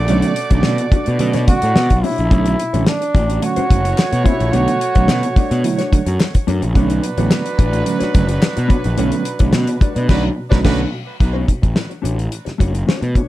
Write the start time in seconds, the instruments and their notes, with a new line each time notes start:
Already playing: horn section A3 F#4 D5
0.08 picked electric bass B1, reed electric piano D3 F#3 A3 C#4, clean electric guitar A3 D4 F#4 C#5, closed hi-hat
0.22 muted clean electric guitar stroke, closed hi-hat
0.36 muted clean electric guitar stroke, closed hi-hat
0.51 picked electric bass B1, reed electric piano D3 F#3 A3 C#4, clean electric guitar A3 D4 F#4 C#5, kick, closed hi-hat
0.63 picked electric bass B2, muted clean electric guitar stroke, snare
0.78 muted clean electric guitar stroke, closed hi-hat
0.91 reed electric piano A3 C#4, clean electric guitar A3 D4 F#4 D5, muted picked electric bass stroke, kick, closed hi-hat
1.06 picked electric bass B2, clean electric guitar A3 D4 F#4 D5, closed hi-hat
1.19 picked electric bass B2, reed electric piano D3 F#3 A3 C#4, muted clean electric guitar stroke, closed hi-hat
1.33 picked electric bass B2, clean electric guitar A3 D4 F#4 C#5, snare, closed hi-hat
1.47 reed electric piano D3 F#3 A3 C#4, trombone F#4, muted clean electric guitar stroke, kick, closed hi-hat
1.62 picked electric bass A2, reed electric piano A3 B3, muted clean electric guitar stroke, closed hi-hat
1.76 picked electric bass B2, snare
1.90 picked electric bass B1, muted clean electric guitar stroke, kick, closed hi-hat
2.02 reed electric piano A3 D4, clean electric guitar A3 D4 F#4 C#5, trombone E4, open hi-hat
2.18 picked electric bass A#1, muted clean electric guitar stroke, closed hi-hat
2.31 picked electric bass B1, reed electric piano D3 F#3 A3 C#4, clean electric guitar A3 D4 F#4 C#5, kick, closed hi-hat
2.46 closed hi-hat
2.59 muted clean electric guitar stroke, closed hi-hat
2.73 picked electric bass A1, reed electric piano D3 F#3 A3 C#4, clean electric guitar A3 D4 F#4 C#5, closed hi-hat
2.87 trombone D4, muted clean electric guitar stroke, snare, clap
3.01 muted clean electric guitar stroke, closed hi-hat
3.14 picked electric bass A1, reed electric piano A3 C#4, clean electric guitar A3 D4 F#4 D5, kick, closed hi-hat
3.29 clean electric guitar A3 D4 F#4 D5, closed hi-hat
3.42 reed electric piano D3 F#3 A3 C#4, horn section A3 F#4 C#5, trombone F#4, muted clean electric guitar stroke, closed hi-hat
3.56 clean electric guitar A3 D4 F#4 C#5, muted picked electric bass stroke, closed hi-hat
3.70 picked electric bass F#1, reed electric piano D3 F#3 A3 C#4, muted clean electric guitar stroke, kick, closed hi-hat
3.84 reed electric piano A3 B3, muted clean electric guitar stroke, closed hi-hat
3.98 snare, clap
4.11 picked electric bass B2, muted clean electric guitar stroke, closed hi-hat
4.24 clean electric guitar A3 D4 F#4 C#5, reed electric piano A3 D4, trombone E4, kick, closed hi-hat
4.39 picked electric bass A#1, muted clean electric guitar stroke, closed hi-hat
4.52 picked electric bass B1, reed electric piano D3 F#3 A3 B3, clean electric guitar A3 D4 F#4 C#5, trombone F#4, closed hi-hat
4.68 muted clean electric guitar stroke, closed hi-hat
4.81 muted clean electric guitar stroke, closed hi-hat
4.95 picked electric bass B1, reed electric piano D3 F#3 A3 C#4, clean electric guitar A3 D4 F#4 C#5, kick, closed hi-hat
5.08 picked electric bass B2, muted clean electric guitar stroke, snare, clap
5.23 muted clean electric guitar stroke, closed hi-hat
5.36 reed electric piano A3 C#4, clean electric guitar A3 D4 F#4 D5, muted picked electric bass stroke, kick, closed hi-hat
5.51 picked electric bass B2, clean electric guitar A3 D4 F#4 D5, closed hi-hat
5.64 reed electric piano D3 F#3 A3 E4, muted clean electric guitar stroke, closed hi-hat
5.78 clean electric guitar A3 D4 F#4 C#5, snare, closed hi-hat
5.91 reed electric piano D3 F#3 A3 D4, muted clean electric guitar stroke, muted picked electric bass stroke, kick, closed hi-hat
6.06 picked electric bass F#2, reed electric piano A3 C#4, muted clean electric guitar stroke, closed hi-hat
6.20 snare, clap
6.34 muted clean electric guitar stroke, kick, closed hi-hat
6.47 picked electric bass F#2, reed electric piano A3 C#4, clean electric guitar A3 D4 F#4 C#5, closed hi-hat
6.62 picked electric bass A#1, muted clean electric guitar stroke, closed hi-hat
6.75 picked electric bass B1, reed electric piano D3 F#3 A3 C#4, horn section F#3 D4 B4, clean electric guitar A3 D4 F#4 C#5, kick, closed hi-hat
6.90 muted clean electric guitar stroke, closed hi-hat
7.03 muted clean electric guitar stroke, closed hi-hat
7.18 picked electric bass A1, reed electric piano D3 F#3 A3 B3, clean electric guitar A3 D4 F#4 C#5, closed hi-hat
7.31 muted clean electric guitar stroke, snare, clap
7.46 muted clean electric guitar stroke, closed hi-hat
7.58 picked electric bass A1, clean electric guitar A3 D4 F#4 D5, reed electric piano A3 C#4, kick, closed hi-hat
7.72 clean electric guitar A3 D4 F#4 D5, closed hi-hat
7.86 reed electric piano D3 F#3 A3 C#4, muted clean electric guitar stroke, closed hi-hat
7.99 clean electric guitar A3 D4 F#4 C#5, muted picked electric bass stroke, snare, closed hi-hat
8.13 picked electric bass F#1, reed electric piano D3 F#3 A3 C#4, muted clean electric guitar stroke, kick, closed hi-hat
8.28 reed electric piano C#4, muted clean electric guitar stroke, closed hi-hat
8.42 snare, clap
8.56 picked electric bass B2, muted clean electric guitar stroke, closed hi-hat
8.68 clean electric guitar A3 D4 F#4 C#5, reed electric piano A3 C#4, kick, closed hi-hat
8.84 picked electric bass A#1, muted clean electric guitar stroke, closed hi-hat
8.97 picked electric bass B1, reed electric piano D3 F#3 A3 C#4, clean electric guitar A3 D4 F#4 C#5, closed hi-hat
9.12 muted clean electric guitar stroke, closed hi-hat
9.25 muted clean electric guitar stroke, closed hi-hat
9.39 picked electric bass B1, reed electric piano D3 F#3 A3 C#4, clean electric guitar A3 D4 F#4 C#5, kick, closed hi-hat
9.53 picked electric bass B2, snare, clap
9.67 muted clean electric guitar stroke, closed hi-hat
9.80 clean electric guitar A3 D4 F#4 D5, reed electric piano A3 C#4, muted picked electric bass stroke, kick, closed hi-hat
9.95 picked electric bass B2, clean electric guitar A3 D4 F#4 D5, closed hi-hat
10.08 picked electric bass B1, reed electric piano D3 F#3 A3 C#4, horn section F#3 D4 B4, clean electric guitar A3 D4 F#4 D5, kick, snare, crash
10.50 picked electric bass B1, reed electric piano D3 F#3 A3 C#4, horn section F#3 D4 B4, clean electric guitar A3 D4 F#4 C#5, kick, snare
10.63 picked electric bass B1, reed electric piano D3 F#3 A3 C#4, horn section F#3 D4 B4, clean electric guitar A3 D4 F#4 C#5, kick, snare, crash
11.20 picked electric bass B1, muted clean electric guitar stroke, kick, closed hi-hat
11.33 clean electric guitar A3 D4 F#4 C#5
11.48 muted clean electric guitar stroke, kick, closed hi-hat
11.62 picked electric bass A1, muted clean electric guitar stroke, kick, closed hi-hat
11.75 muted clean electric guitar stroke, snare
11.90 muted clean electric guitar stroke, closed hi-hat
12.02 picked electric bass A1, clean electric guitar A3 D4 F#4 C#5, closed hi-hat
12.18 muted clean electric guitar stroke, closed hi-hat
12.32 closed hi-hat
12.45 muted clean electric guitar stroke, muted picked electric bass stroke, snare, closed hi-hat
12.58 picked electric bass F#1, clean electric guitar A3 D4 F#4 C#5, kick, closed hi-hat
12.74 muted clean electric guitar stroke, closed hi-hat
12.87 clean electric guitar A3 D4 F#4 C#5, snare
13.02 picked electric bass B2, muted clean electric guitar stroke, closed hi-hat
13.15 clean electric guitar A3 D4 F#4 C#5, kick, closed hi-hat